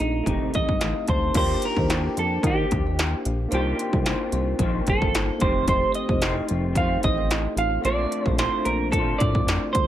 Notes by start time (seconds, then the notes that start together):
Already playing: F3 A3 C4 D4 F4
0.00 A#1 D#4, closed hi-hat
0.23 F1 C3 D#3 A3 C4 D#4, kick, closed hi-hat
0.29 A3 D#4 G4
0.43 C2
0.54 A1 D#5, kick, closed hi-hat
0.68 G1, kick
0.80 A1 F5, snare, closed hi-hat
1.08 D2 C5 A5, kick, closed hi-hat
1.32 D#2 D#3 F3 A#3 D4, kick, closed hi-hat, crash
1.36 A#3 D4 F4 G4 A#4 C5 D5
1.62 A#4, closed hi-hat
1.77 D#2 A4 C5, kick
1.88 F3 A#3 D4, snare, closed hi-hat
1.93 G4
2.17 F2 A4 A#4 D5, closed hi-hat
2.41 D#3 F3 A#3 A#4 D5, kick, closed hi-hat
2.47 D4 G4
2.71 D#2, kick, closed hi-hat
2.87 C5 D#5
2.99 snare, closed hi-hat
3.23 A#1 F4, closed hi-hat
3.49 C2 C3 D#3 A#3 D4 D#4 C5 D#5, closed hi-hat
3.53 A#3 C4 F4 G4
3.79 closed hi-hat
3.93 C2 A4 C5, kick
4.05 D#3 A#3 C4 F4 G4 C5, snare, closed hi-hat
4.32 C2 C5 D#5, closed hi-hat
4.59 A#1 D#3 A#3 C4 C5 D#5, kick, closed hi-hat
4.63 F4
4.87 G1 A4, kick, closed hi-hat
5.02 D5 F5, kick
5.15 snare, closed hi-hat
5.38 F1 A3 C4 D#4 F4 C5, kick, closed hi-hat
5.42 F2 C3 D#3 A3 G4
5.68 C5 D#5, kick, closed hi-hat
5.94 D#5, closed hi-hat
6.09 F1 A4 C5, kick
6.21 D#3 A3 C4 F4 A4, snare, closed hi-hat
6.49 F1 C5 D#5, closed hi-hat
6.73 F2 D#3 A3 D#5, kick, closed hi-hat
6.77 C4 C5 F5
6.81 F4
7.03 A1 D#5, kick, closed hi-hat
7.18 D5 F5
7.31 snare, closed hi-hat
7.56 A1 A3 C4 D#4 F4 F5, closed hi-hat
7.81 A#1 A#2 F3 A3 C4 D4 D5
7.85 A3 D4 F4 A#4 D5, closed hi-hat
8.12 closed hi-hat
8.26 A#1 A4 C5, kick
8.38 F3 A3 D4 A4 C5, snare, closed hi-hat
8.42 F4
8.65 A#1 A#4 D5, closed hi-hat
8.91 A#2 F3 A3 A4 A#4 D5, kick, closed hi-hat
8.96 D4 F4
9.18 A2 A3 C4 D4 F4 D5, kick, closed hi-hat
9.35 D5 F5, kick
9.47 F2, snare, closed hi-hat
9.73 D2 C5, kick, closed hi-hat